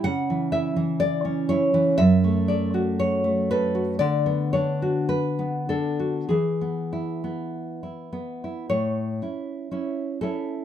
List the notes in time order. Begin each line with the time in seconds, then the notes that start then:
0.04 C#3 F#5
0.30 E3
0.52 E4 E5
0.76 E3
1.00 D5
1.25 C#4
1.49 E4 C#5
1.74 E3
1.98 F#2 E5
2.24 A3
2.48 A4 D5
2.74 F#4
3.00 C#5
3.24 A3
3.51 A4 B4
3.75 F#4
3.99 D3 D5
4.26 B3
4.53 D4 C#5
4.82 F#4
5.09 B4
5.39 B3
5.69 D4 A4
6.00 F#4
6.29 E3 G#4
6.61 B3
6.93 E4
7.24 B3
7.83 E4
8.13 B3
8.44 E4
8.70 A2 C#5
9.22 C#4 E4
9.71 C#4 E4
10.21 C#4 E4 A4